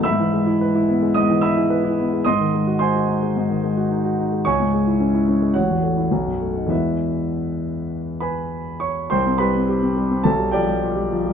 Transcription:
X:1
M:4/4
L:1/16
Q:1/4=108
K:E
V:1 name="Grand piano"
[ebe']8 [dd']2 [ebe']6 | [d^bd']4 [^Bgb]8 z4 | [cgc']8 [Fcf]8 | [EBe]8- [EBe]2 [Bgb]4 [cc']2 |
[K:Gmix] [cgc']2 [Bb]6 [Aa]2 [Gdg]6 |]
V:2 name="Grand piano" clef=bass
G,, E, G, E B E B, G, G,, E, G, E B E B, G, | G,, D, G, F D F D G, G,, D, G, F D F D G, | C,, G,, G, E C E C G, A,,, E,, A, E B,,, F,, A, D | [E,,G,B,]16 |
[K:Gmix] C,, C G, C G C G, C B,,, G, F, G, F G, F, G, |]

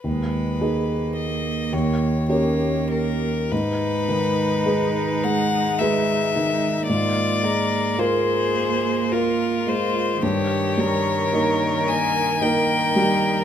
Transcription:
X:1
M:3/4
L:1/8
Q:1/4=54
K:G#m
V:1 name="Violin"
B2 d c c A | B3 f e2 | =d2 ^B2 A B | c3 g =g2 |]
V:2 name="Violin"
z6 | D6 | ^E A G2 E2 | =G A3 A2 |]
V:3 name="Grand piano"
D,, [DGB]2 D,, [C=GA]2 | G,, D, [G,GB] G, [G,GB] D, | G,, G, [A,^EA] A, [A,EA] G, | =G,, =G, [A,DA] A, [A,DA] G, |]
V:4 name="Cello"
G, A,3 A,2 | G,6 | A,6 | D,6 |]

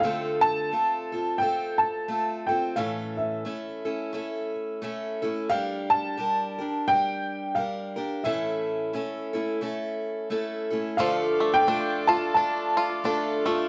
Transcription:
X:1
M:4/4
L:1/16
Q:"Swing" 1/4=88
K:Dm
V:1 name="Upright piano"
f2 a6 g2 a4 g2 | f2 e8 z6 | f2 a6 g4 f4 | e12 z4 |
f3 g3 a2 a6 z2 |]
V:2 name="Harmonium"
z16 | z16 | z16 | z16 |
[A,Fd]16 |]
V:3 name="Five-string banjo"
z16 | z16 | z16 | z16 |
F,2 A,2 D2 F2 D2 F2 D2 A,2 |]
V:4 name="Steel-string acoustic guitar"
[D,A,CFA]4 [A,CFA]2 [CFA]2 [A,CFA]4 [A,CFA]2 [CFA]2 | [A,,E,A,^CA]4 [A,CEA]2 [A,CEA]2 [A,CEA]4 [A,CEA]2 [A,CEA]2 | [G,DGB]4 [G,DGB]2 [DGB]2 [G,DGB]4 [G,DGB]2 [DGB]2 | [A,,E,A,^CEA]4 [A,CEA]2 [A,CEA]2 [A,CEA]4 [A,CEA]2 [A,CEA]2 |
[D,A,DFA]4 [A,DFA]2 [DFA]6 [A,DFA]2 [DFA]2 |]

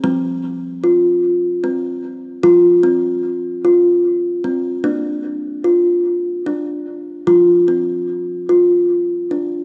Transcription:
X:1
M:3/4
L:1/8
Q:1/4=74
K:F
V:1 name="Kalimba"
C2 F2 C2 | F C2 F2 C | D2 F2 D2 | F C2 F2 D |]
V:2 name="Kalimba" clef=bass
F,6 | F,6 | B,6 | F,6 |]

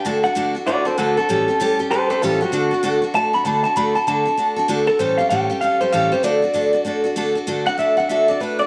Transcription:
X:1
M:4/4
L:1/8
Q:"Swing" 1/4=194
K:D
V:1 name="Clean electric guitar"
a f2 z [Fd] [A=c] [FA] A- | A3 z [A=c] [Ac] [=FA] ^F- | F3 z a b a a | b a a4 z A |
=c =f g2 f c f c | d4 z4 | z f e f e d B d |]
V:2 name="Steel-string acoustic guitar"
[D,A,DFA] [DFA] [D,A,DFA] [DFA] [A,DFA] [DFA] [D,A,DFA] [DFA] | [A,,E,G,CGA] [G,CGA] [A,,E,G,CGA] [G,CGA] [G,CGA] [G,CGA] [A,,E,G,CGA] [G,CGA] | [D,A,DFA] [DFA] [D,A,DFA] [DFA] [A,DFA] [DFA] [D,A,DFA] [DFA] | [D,A,DFA] [DFA] [D,A,DFA] [FA] [A,DFA] [DFA] [D,A,DFA] [DFA] |
[A,,E,G,CGA] [G,CGA] [A,,E,G,CGA] [G,CGA] [G,CGA] [G,CGA] [A,,E,G,CGA] [G,CGA] | [D,A,DFA] [DFA] [D,A,DFA] [DFA] [A,DFA] [DFA] [D,A,DFA] [DFA] | [D,A,DFA] [DFA] [A,DFA] [DFA] [D,A,DFA] [DFA] [A,DFA] [DFA] |]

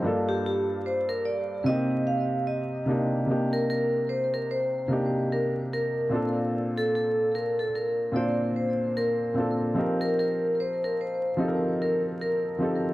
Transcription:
X:1
M:4/4
L:1/16
Q:"Swing 16ths" 1/4=74
K:Cdor
V:1 name="Vibraphone"
z G G2 c B d2 e2 f2 e2 z2 | z B B2 c B c2 z2 B z B2 z2 | z A A2 B A B2 d2 c2 B2 z2 | z B B2 c B c2 z2 B z B2 z2 |]
V:2 name="Felt piano"
[G,,B,DFA]8 [C,B,CEG]6 [C,B,DEG]2 | [C,B,DEG]8 [C,B,DEG]6 [B,,CDFA]2- | [B,,CDFA]6 z2 [B,,CDFc]6 [B,,CDFA]2 | [F,CEGB]8 [F,CEGAB]6 [F,CEGA]2 |]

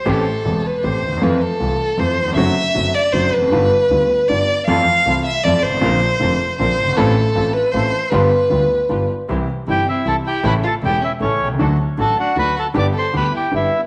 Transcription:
X:1
M:3/4
L:1/16
Q:1/4=156
K:C
V:1 name="Bandoneon"
z12 | z12 | z12 | z12 |
z12 | z12 | z12 | z12 |
z4 [Gg]2 [Ee]2 [Aa]2 [Gg]2 | [Bb]2 [Aa]2 [Gg]2 [Ee]2 [^C^c]3 z | z4 [Aa]2 [^F^f]2 [Bb]2 [Aa]2 | [dd']2 [cc']2 [Bb]2 [Gg]2 [Ee]3 z |]
V:2 name="Violin"
A6 B2 c4 | B2 A6 c4 | e6 d2 c2 B2- | B8 d4 |
f6 e2 d2 c2- | c8 c4 | A6 B2 c4 | B8- B2 z2 |
z4 E2 C2 E2 E2 | E2 F2 E2 ^C2 A,3 z | z4 ^F2 D2 F2 F2 | B2 A2 G2 E2 B,3 z |]
V:3 name="String section"
z12 | z12 | z12 | z12 |
[EFA]2 z2 [EFA]2 z2 [EFA]2 z2 | [CD_B]2 z2 [CDB]2 z2 [CDB]2 z2 | [EFA]2 z2 [EFA]2 z2 [EFA]2 z2 | [FGB]2 z2 [FGB]2 z2 [FGB]2 z2 |
[CEG]2 z2 [CEG]2 z2 [CEG]2 z2 | [^CEA]2 z2 [CEA]2 z2 [CEA]2 z2 | [D^FA]2 z2 [DFA]2 z2 [DFA]2 z2 | [B,DG]2 z2 [B,DG]2 z2 [B,DG]2 z2 |]
V:4 name="Grand piano" clef=bass
[A,,,A,,E,A,CG]2 z2 [E,,,E,,E,A,CG]2 z2 [A,,,A,,E,A,CG]2 z/2 D,,/2 _E,,/2 =E,,/2 | [F,,E,F,A,CF]2 z2 [C,,C,E,A,CF]2 z2 [F,,E,F,A,CF]2 z/2 _E,,/2 =E,,/2 F,,/2 | [^F,,D,^F,A,C^F]2 z2 [F,,D,F,A,CF]2 z2 [F,,D,F,A,CF]2 z/2 E,,/2 =F,,/2 ^F,,/2 | [G,,,G,,D,G,B,F]2 z2 [D,,D,G,B,F]2 z2 [G,,,G,,D,G,B,F]2 z2 |
[F,,E,F,A,CF]2 z2 [C,,C,E,A,CF]2 z2 [F,,E,F,A,CF]2 z/2 G,,,/2 _A,,,/2 =A,,,/2 | [_B,,,_B,,D,_B,CF]2 z2 [F,,,F,,D,B,CF]2 z2 [B,,,B,,D,B,CF]2 z/2 ^F,,,/2 G,,,/2 _A,,,/2 | [A,,,A,,E,A,CF]2 z2 [A,,,A,,E,A,CF]2 z2 [A,,,A,,E,A,CF]2 z2 | [G,,,G,,D,G,B,F]2 z2 [D,,D,G,B,F]2 z2 [G,,,G,,D,G,B,F]2 z2 |
[C,,C,E,G,E]2 z2 [G,,,G,,C,E,G,E]2 z2 [C,,C,E,G,E]2 z2 | [A,,,A,,^C,E,A,E]2 z2 [E,,,E,,C,E,A,E]2 z2 [A,,,A,,C,E,A,E]2 z/2 B,,,/2 =C,,/2 ^C,,/2 | [D,,D,^F,A,^F]2 z2 [A,,,A,,D,F,A,F]2 z2 [D,,D,F,A,F]2 z2 | [G,,,G,,D,G,B,G]2 z2 [D,,D,G,B,G]2 z2 [G,,,G,,D,G,B,G]2 z2 |]
V:5 name="Double bass" clef=bass
A,,,2 z2 E,,,2 z2 A,,,2 _E,,2 | F,,2 z2 C,,2 z2 F,,2 z2 | ^F,,,2 z2 F,,,2 z2 F,,,2 =F,,,2 | G,,,2 z2 D,,2 z2 G,,,2 z2 |
F,,2 z2 C,,2 z2 F,,2 _A,,,2 | _B,,,2 z2 F,,,2 z2 B,,,2 G,,,2 | A,,,2 z2 A,,,2 z2 A,,,2 z2 | G,,,2 z2 D,,2 z2 G,,,2 z2 |
C,,2 z2 G,,,2 z2 C,,2 z2 | A,,,2 z2 E,,,2 z2 A,,,2 C,,2 | D,,2 z2 A,,,2 z2 D,,2 z2 | G,,,2 z2 D,,2 z2 G,,,2 z2 |]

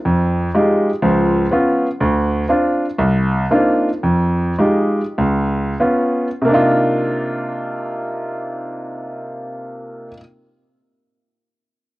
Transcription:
X:1
M:4/4
L:1/8
Q:"Swing" 1/4=100
K:Cm
V:1 name="Grand piano"
F,,2 [A,EFG] z [_D,,F,]2 [_C_DF] z | D,,2 [CDF] z C,,2 [B,CDEF] z | F,,2 [A,EFG] z _D,,2 [_C_DF] z | [C,B,DEF]8- |
[C,B,DEF]8 |]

